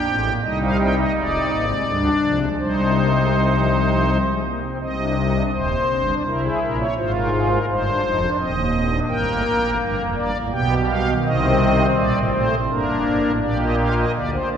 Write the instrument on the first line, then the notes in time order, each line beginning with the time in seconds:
pipe organ
Already playing: G4 G5
0.07 A1 A2 C4
0.26 A#3
0.42 C2 C3 G3 D#4 D#5
0.62 F5
0.79 G5
0.97 D#5
1.15 F1 F2 G#3 D5
1.33 C4
1.51 G#1 G#2 A#3
1.68 G#3
1.86 D2 D3 G3 D4
2.22 C2 C3 F3
2.41 G#3
2.59 C2 C3 G3 D#4 C5
2.95 A#3
3.14 G#3
3.34 G3
3.51 F3
3.71 D#3
3.89 F3
4.07 G3
4.25 G#3
4.44 A#3
4.62 C4
4.80 C2 C3 C4 D#5
4.99 D4
5.17 D#4
5.35 D4
5.52 D#1 D#2 C4 C5
5.71 A#3
5.89 G1 G2 C4
6.08 D4
6.26 C2 C3 E4 A#4
6.45 G#4
6.62 A#1 A#2 A#4
6.79 C#5
6.97 G#1 G#2 F4 C5
7.14 A#4
7.33 G#4
7.50 A#4
7.69 G1 G2 D#4 C5
7.86 D4
8.04 F1 F2 D#4
8.22 D4
8.38 D#1 D#2 C4 D#5
8.56 A#3
8.73 C4
8.91 D4
9.08 G1 G2 A#3 A#4 G5
9.25 A1 A2
9.43 A#1 A#2
9.60 A1 A2
9.80 G1 G2 A#4
9.98 F1 F2
10.15 G1 G2 D5
10.33 A1 A2
10.51 B1 B2 B3 G4 G5
10.87 G3 F5
11.05 D#3
11.24 C2 C3 C4 D#5
11.96 A#1 A#2 G3 D5
12.14 A1 A2
12.32 A#1 A#2 A3 C5
12.51 A1 A2
12.69 G1 G2 A#3 D4 A#4
12.88 F1 F2
13.05 G1 G2
13.24 A1 A2
13.42 A#1 A#2 A#3 G4 D5
13.60 D#5
13.78 F5
13.96 D#5
14.14 D2 D3 A#3 D5
14.33 C5
14.51 C2 C3 D4 D5